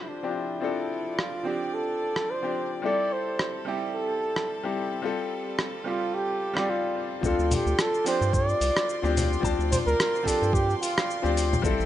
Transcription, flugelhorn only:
0.02 0.10 E4 medium
0.09 0.31 D4 medium
0.30 0.37 F4 medium
0.35 1.20 E4 medium
1.19 1.49 F4 medium
1.47 1.76 G4 medium
1.74 2.32 A4 loud
2.30 2.72 C5 medium
2.85 3.14 D5 loud
3.13 3.67 C5 medium
3.95 4.73 A4 loud
5.88 6.16 F4 medium
6.14 6.72 G4 loud
6.70 7.12 F4 medium
7.27 7.56 F4 medium
7.54 7.82 G4 medium
7.81 8.07 A4 loud
8.08 8.36 C5 loud
8.34 9.17 D5 loud
9.71 9.78 C5 loud
9.86 10.28 A#4 loud
10.27 10.55 A4 loud
10.54 10.76 G4 loud
10.76 10.83 G4 medium
10.82 11.37 F4 medium

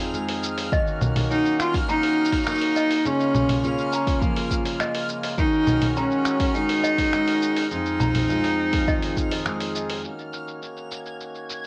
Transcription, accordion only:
0.00 0.70 F3 medium
0.00 0.70 C4 medium
0.00 0.70 D#4 medium
0.00 0.70 G#4 loud
0.72 3.03 D#3 medium
0.72 5.34 A#3 medium
0.72 3.03 C#4 medium
0.72 3.03 F#4 loud
3.05 5.36 C#3 medium
3.05 7.67 G#3 medium
3.05 5.36 F4 loud
5.38 7.69 D#3 medium
5.38 7.69 C#4 medium
5.38 7.69 F#4 loud
7.71 10.02 F3 medium
7.71 10.02 C4 medium
7.71 10.02 D#4 medium
7.71 10.02 G#4 medium
10.04 11.67 D#3 medium
10.04 11.67 A#3 medium
10.04 11.67 C#4 medium
10.04 11.67 F#4 medium

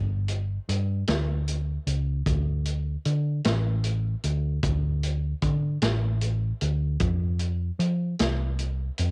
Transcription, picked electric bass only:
0.00 0.58 G1 loud
0.69 1.03 G2 medium
1.08 1.77 D2 loud
1.87 2.21 C#2 loud
2.27 2.95 D2 loud
3.06 3.40 D3 medium
3.46 4.14 A1 loud
4.24 4.58 D2 loud
4.64 5.32 D2 loud
5.42 5.77 D3 medium
5.82 6.51 A1 loud
6.62 6.96 D2 medium
7.01 7.70 F2 loud
7.79 8.14 F3 medium
8.20 8.89 C2 loud
8.99 9.11 F2 medium

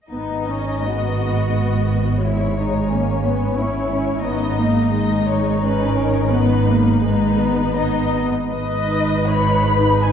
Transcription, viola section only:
0.12 0.46 B3 soft
0.49 0.85 C#4 soft
0.84 2.24 B3 soft
2.24 2.91 G#3 soft
2.92 3.26 A#3 soft
3.26 3.59 B3 soft
3.59 3.91 C#4 soft
3.92 4.26 C#4 soft
4.26 4.59 B3 soft
4.59 4.94 A#3 soft
4.93 5.62 G#3 soft
5.64 6.32 C#4 soft
6.32 6.68 B3 soft
6.67 7.03 A#3 soft
7.03 7.39 G#3 soft
7.38 7.73 B3 soft
7.75 8.28 B3 soft
8.51 10.12 D#4 soft
8.51 10.12 B4 soft

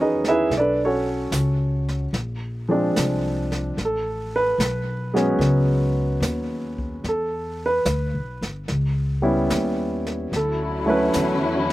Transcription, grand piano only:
0.00 0.12 D#3 soft
0.00 0.12 F#3 soft
0.00 0.12 G#3 soft
0.00 0.51 B3 soft
0.00 0.51 C#4 soft
0.00 0.25 D#4 soft
0.00 0.50 F#4 soft
0.00 0.02 G#4 soft
0.00 0.25 G#4 soft
0.00 0.02 B4 soft
0.00 0.25 B4 soft
0.00 0.51 C#5 medium
0.00 0.24 D#5 medium
0.28 0.52 E4 medium
0.28 0.52 G#4 medium
0.28 0.52 B4 medium
0.28 0.52 E5 medium
0.57 0.81 D4 soft
0.57 0.81 A4 soft
0.57 0.81 B4 soft
0.57 0.80 D5 medium
0.85 2.05 C#4 soft
0.85 2.05 F#4 soft
0.85 2.05 A4 soft
0.85 2.05 C#5 medium
2.69 2.92 F3 soft
2.69 2.92 G#3 soft
2.69 2.93 C4 soft
2.69 2.93 D4 medium
3.85 4.36 A4 medium
4.36 5.12 B4 medium
5.14 6.17 F#3 medium
5.14 6.16 G#3 medium
5.14 6.17 B3 soft
5.14 6.18 C#4 medium
7.09 7.61 A4 medium
7.66 8.41 B4 medium
9.22 9.46 G3 soft
9.22 9.46 B3 soft
9.22 9.46 C#4 soft
9.22 9.47 E4 medium
10.36 10.88 A4 medium
10.86 11.10 F#3 soft
10.86 11.10 A3 soft
10.86 11.11 C#4 soft
10.86 11.11 E4 medium
10.86 11.67 B4 medium

